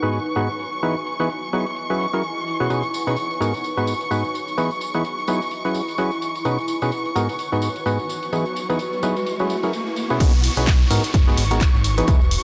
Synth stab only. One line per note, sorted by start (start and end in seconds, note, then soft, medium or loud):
0.02 0.19 G#2 medium
0.02 0.19 B3 medium
0.02 0.19 D#4 medium
0.02 0.19 F#4 medium
0.02 0.19 G#4 medium
0.02 0.19 B4 medium
0.36 0.48 G#2 medium
0.36 0.48 B3 medium
0.36 0.48 D#4 medium
0.36 0.48 F#4 medium
0.36 0.48 G#4 medium
0.36 0.48 B4 medium
0.83 0.95 E3 medium
0.83 0.95 B3 medium
0.83 0.95 D#4 medium
0.83 0.95 E4 medium
0.83 0.95 G#4 medium
0.83 0.95 B4 medium
1.20 1.29 E3 medium
1.20 1.29 B3 medium
1.20 1.29 D#4 medium
1.20 1.29 E4 medium
1.20 1.29 G#4 medium
1.20 1.29 B4 medium
1.53 1.65 F#3 medium
1.53 1.65 B3 medium
1.53 1.66 D#4 medium
1.53 1.66 E4 medium
1.53 1.65 G#4 medium
1.53 1.66 B4 loud
1.90 2.06 F#3 medium
1.90 2.06 C#4 medium
1.90 2.06 E4 medium
1.90 2.06 F#4 medium
1.90 2.06 G#4 medium
1.90 2.06 B4 medium
2.13 2.23 F#3 medium
2.13 2.23 C#4 medium
2.13 2.23 E4 medium
2.13 2.23 F#4 medium
2.13 2.23 G#4 medium
2.13 2.23 A#4 medium
2.60 2.69 B2 medium
2.60 2.69 C#4 medium
2.60 2.69 E4 medium
2.60 2.69 F#4 medium
2.60 2.69 G#4 medium
2.60 2.69 B4 medium
2.70 2.83 B2 medium
2.70 2.83 C#4 medium
2.70 2.83 D#4 medium
2.70 2.83 F#4 medium
2.70 2.83 G#4 medium
2.70 2.83 B4 medium
3.07 3.16 B2 medium
3.07 3.16 C#4 medium
3.07 3.16 D#4 medium
3.07 3.16 F#4 medium
3.07 3.16 G#4 medium
3.07 3.16 B4 medium
3.40 3.53 G#2 medium
3.40 3.53 B3 medium
3.40 3.53 D#4 medium
3.40 3.53 F#4 medium
3.40 3.53 G#4 medium
3.40 3.53 A#4 loud
3.77 3.94 G#2 medium
3.77 3.94 B3 medium
3.77 3.94 D#4 medium
3.77 3.94 F#4 medium
3.77 3.94 G#4 medium
3.77 3.94 B4 medium
4.11 4.23 G#2 medium
4.11 4.23 B3 medium
4.11 4.23 D#4 medium
4.11 4.23 F#4 medium
4.11 4.23 G#4 medium
4.11 4.23 B4 medium
4.58 4.70 E3 medium
4.58 4.70 B3 medium
4.58 4.70 D#4 medium
4.58 4.70 E4 medium
4.58 4.70 G#4 medium
4.58 4.70 B4 medium
4.95 5.04 E3 medium
4.95 5.04 B3 medium
4.95 5.04 D#4 medium
4.95 5.04 E4 medium
4.95 5.04 G#4 medium
4.95 5.04 B4 medium
5.28 5.40 F#3 medium
5.28 5.40 B3 medium
5.28 5.40 D#4 medium
5.28 5.40 E4 medium
5.28 5.40 G#4 medium
5.28 5.40 B4 loud
5.65 5.81 F#3 medium
5.65 5.81 C#4 medium
5.65 5.81 E4 medium
5.65 5.81 F#4 medium
5.65 5.81 G#4 medium
5.65 5.81 B4 medium
5.98 6.11 F#3 medium
5.98 6.11 C#4 medium
5.98 6.11 E4 medium
5.98 6.11 F#4 medium
5.98 6.11 G#4 medium
5.98 6.11 B4 medium
6.45 6.58 B2 medium
6.45 6.58 C#4 medium
6.45 6.58 D#4 medium
6.45 6.58 F#4 medium
6.45 6.58 G#4 medium
6.45 6.58 B4 medium
6.82 6.91 B2 medium
6.82 6.91 C#4 medium
6.82 6.91 D#4 medium
6.82 6.91 F#4 medium
6.82 6.91 G#4 medium
6.82 6.91 B4 medium
7.15 7.28 G#2 medium
7.15 7.28 B3 medium
7.15 7.28 D#4 medium
7.15 7.28 F#4 medium
7.15 7.28 G#4 medium
7.15 7.28 A#4 loud
7.52 7.69 G#2 medium
7.52 7.69 B3 medium
7.52 7.69 D#4 medium
7.52 7.69 F#4 medium
7.52 7.69 G#4 medium
7.52 7.69 B4 medium
7.86 7.98 G#2 medium
7.86 7.98 B3 medium
7.86 7.98 D#4 medium
7.86 7.98 F#4 medium
7.86 7.98 G#4 medium
7.86 7.98 B4 medium
8.33 8.45 E3 medium
8.33 8.45 B3 medium
8.33 8.45 D#4 medium
8.33 8.45 E4 medium
8.33 8.45 G#4 medium
8.33 8.45 B4 medium
8.70 8.79 E3 medium
8.70 8.79 B3 medium
8.70 8.79 D#4 medium
8.70 8.79 E4 medium
8.70 8.79 G#4 medium
8.70 8.79 B4 medium
9.03 9.15 F#3 medium
9.03 9.15 B3 medium
9.03 9.15 D#4 medium
9.03 9.15 E4 medium
9.03 9.15 G#4 medium
9.03 9.15 B4 loud
9.40 9.56 F#3 medium
9.40 9.56 C#4 medium
9.40 9.56 E4 medium
9.40 9.56 F#4 medium
9.40 9.56 G#4 medium
9.40 9.56 B4 medium
9.63 9.73 F#3 medium
9.63 9.73 C#4 medium
9.63 9.73 E4 medium
9.63 9.73 F#4 medium
9.63 9.73 G#4 medium
9.63 9.73 A#4 medium
10.10 10.19 B2 medium
10.10 10.19 C#4 medium
10.10 10.19 E4 medium
10.10 10.19 F#4 medium
10.10 10.19 G#4 medium
10.10 10.19 B4 medium
10.20 10.33 C#4 medium
10.20 10.33 D#4 medium
10.20 10.33 F#4 medium
10.20 10.33 G#4 medium
10.20 10.33 B4 loud
10.57 10.66 B2 medium
10.57 10.66 C#4 medium
10.57 10.66 D#4 medium
10.57 10.66 F#4 medium
10.57 10.66 G#4 medium
10.57 10.66 B4 loud
10.90 11.03 G#2 medium
10.90 11.03 B3 medium
10.90 11.03 D#4 medium
10.90 11.03 F#4 medium
10.90 11.03 G#4 medium
10.90 11.03 A#4 loud
11.27 11.44 G#2 medium
11.27 11.44 B3 medium
11.27 11.44 D#4 medium
11.27 11.44 F#4 medium
11.27 11.44 G#4 medium
11.27 11.44 B4 medium
11.51 11.60 G#2 medium
11.51 11.60 B3 medium
11.51 11.60 D#4 medium
11.51 11.60 F#4 medium
11.51 11.60 G#4 medium
11.51 11.60 A#4 medium
11.98 12.06 E3 medium
11.98 12.06 B3 medium
11.98 12.06 D#4 medium
11.98 12.06 F#4 medium
11.98 12.06 G#4 medium
11.98 12.06 B4 loud
12.08 12.20 E3 medium
12.08 12.20 B3 medium
12.08 12.20 D#4 medium
12.08 12.20 E4 medium
12.08 12.20 G#4 medium
12.08 12.20 B4 medium